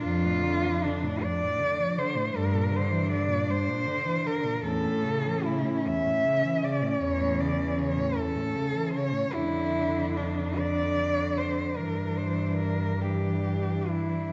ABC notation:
X:1
M:12/8
L:1/16
Q:3/8=51
K:Dm
V:1 name="Cello"
F4 D2 d4 c2 B2 c2 d2 c4 B2 | A4 E2 e4 d2 ^c2 d2 c2 A4 c2 | E4 D2 d4 c2 B2 c2 B2 G4 E2 |]
V:2 name="Cello"
D12 D12 | ^C24 | D6 D6 D6 D6 |]
V:3 name="Cello" clef=bass
F,, A,, D, F, D, A,, F,, A,, D, F, D, A,, G,, B,, D, E, D, B,, G,, B,, D, E, D, B,, | E,, A,, ^C, E, C, A,, E,, A,, C, E, C, A,, E,, A,, C, E, C, A,, E,, A,, C, E, C, A,, | D,6 D,6 E,6 E,6 |]
V:4 name="Cello" clef=bass
F,,6 z6 G,,6 z6 | A,,6 z6 E,,6 z6 | F,,12 G,,12 |]